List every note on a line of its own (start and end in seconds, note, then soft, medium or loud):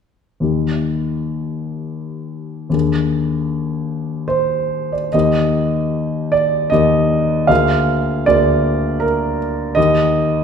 0.40 2.68 D#2 soft
0.40 2.69 A#3 soft
0.40 2.69 D#4 soft
0.40 2.70 G4 soft
2.70 5.07 D#2 soft
2.70 5.08 A#3 soft
2.70 5.09 D4 soft
2.70 5.09 G#4 soft
4.28 4.92 C5 medium
4.92 5.13 D5 soft
5.13 6.68 D#2 soft
5.13 6.68 A#3 soft
5.13 6.68 D#4 soft
5.13 6.68 G4 soft
5.13 6.33 D#5 soft
6.32 6.71 D5 medium
6.70 7.47 D#2 soft
6.70 7.47 A#3 soft
6.70 7.48 D#4 soft
6.70 7.48 G4 soft
6.70 7.49 D#5 medium
7.47 8.25 D2 soft
7.47 8.25 A#3 soft
7.47 8.25 G#4 soft
7.47 8.26 F5 medium
8.26 9.73 D2 soft
8.26 9.73 A#3 soft
8.26 9.73 G#4 soft
8.26 9.02 D5 medium
9.00 9.38 A#4 medium
9.75 10.44 D#2 soft
9.75 10.44 A#3 soft
9.75 10.44 D#4 soft
9.75 10.44 G4 soft
9.75 10.44 D#5 medium